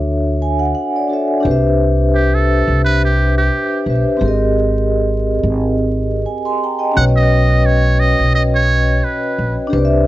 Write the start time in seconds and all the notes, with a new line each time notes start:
Already playing: D2 D4 F#4 A4 C#5 E5
0.42 G#5
0.60 F#5
0.75 F#5
0.96 D5
1.08 D4 F#4 A4
1.12 C#5 E5
1.40 D4 G4
1.45 C2 B4 C5
1.51 E5
2.15 G4
2.35 A4
2.68 C2
2.84 B4
3.05 G4
3.38 G4
3.84 B1 D4 G4 B4 C5
3.90 E5
4.17 G#1 C4 G4
4.22 G#4 A#4
4.28 D#5
5.43 G#1
6.26 G#5
6.45 G#5 C6
6.63 G5 A#5
6.79 D#5 G5
6.91 C#4 F#4
6.96 B1 B4 C#5 F#5
7.02 C#5
7.08 D#5
7.16 D#5
7.66 C#5
8.00 D#5
8.19 B1
8.35 D#5
8.55 C#5
9.04 B4
9.38 A#1
9.67 D4 G4
9.73 C2 B4 C5
9.78 D5
9.85 E5